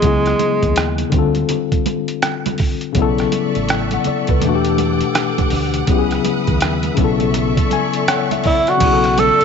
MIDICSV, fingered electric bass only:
0, 0, Header, 1, 3, 480
1, 0, Start_track
1, 0, Tempo, 731707
1, 17, Time_signature, 4, 2, 24, 8
1, 6197, End_track
2, 0, Start_track
2, 0, Title_t, "Fingered electric bass"
2, 0, Program_c, 0, 33
2, 21, Note_on_c, 0, 37, 93
2, 213, Note_off_c, 0, 37, 0
2, 415, Note_on_c, 0, 39, 80
2, 676, Note_off_c, 0, 39, 0
2, 742, Note_on_c, 0, 38, 100
2, 933, Note_off_c, 0, 38, 0
2, 1940, Note_on_c, 0, 35, 88
2, 2132, Note_off_c, 0, 35, 0
2, 2337, Note_on_c, 0, 33, 68
2, 2597, Note_off_c, 0, 33, 0
2, 2817, Note_on_c, 0, 37, 89
2, 2885, Note_off_c, 0, 37, 0
2, 2907, Note_on_c, 0, 40, 106
2, 3289, Note_off_c, 0, 40, 0
2, 3625, Note_on_c, 0, 38, 86
2, 3815, Note_off_c, 0, 38, 0
2, 3859, Note_on_c, 0, 37, 88
2, 4052, Note_off_c, 0, 37, 0
2, 4253, Note_on_c, 0, 39, 71
2, 4515, Note_off_c, 0, 39, 0
2, 4579, Note_on_c, 0, 35, 105
2, 4964, Note_off_c, 0, 35, 0
2, 5781, Note_on_c, 0, 35, 95
2, 6095, Note_off_c, 0, 35, 0
2, 6197, End_track
3, 0, Start_track
3, 0, Title_t, "Muted fingered electric bass strokes"
3, 2667, Note_on_c, 9, 29, 48
3, 2732, Note_off_c, 9, 29, 0
3, 6197, End_track
0, 0, End_of_file